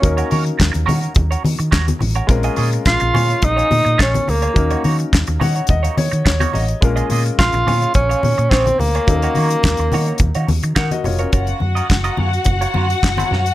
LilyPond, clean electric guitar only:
\new Staff \with { instrumentName = "Clean electric guitar" } { \time 4/4 \key ees \dorian \tempo 4 = 106 r16 <des' ges' bes' des''>16 <des' ges' bes' des''>16 r8. <des' ges' bes' des''>16 <des' ges' bes' des''>16 r16 <des' ges' bes' des''>16 r8 <des' ges' bes' des''>16 r8 <des' ges' bes' des''>16 | r16 <des' f' aes' ees''>16 <des' f' aes' ees''>16 r8. <des' f' aes' des''>16 <des' f' aes' des''>16 r16 <des' f' aes' des''>16 r8 <des' f' aes' des''>16 r8 <des' f' aes' des''>16 | r16 <bes ees' ges' des''>16 <bes ees' ges' des''>16 r8. <bes ees' ges' des''>16 <bes ees' ges' des''>16 r16 <bes ees' ges' des''>16 r8. <bes ees' ges' des''>16 <bes ees' ges' des''>16 r16 | r16 <bes f' aes' ees''>16 <bes f' aes' ees''>16 r8. <bes f' aes' des''>16 <bes f' aes' des''>16 r16 <bes f' aes' des''>16 r8 <bes f' aes' des''>16 r8 <bes f' aes' des''>16 |
r16 <bes ees' ges' des''>16 <bes ees' ges' des''>16 r8. <bes ees' ges' des''>16 <bes ees' ges' des''>16 r16 <bes ees' ges' des''>16 r8 <bes ees' ges' des''>16 r8 <bes ees' ges' des''>16 | <des' f' bes' des''>8 r16 <des' f' bes' ees''>16 r16 <des' f' bes' ees''>16 <des' f' bes' des''>16 r8 <des' f' bes' des''>16 <des' f' bes' des''>16 r8 <des' f' bes' des''>16 <des' f' bes' des''>16 r16 | }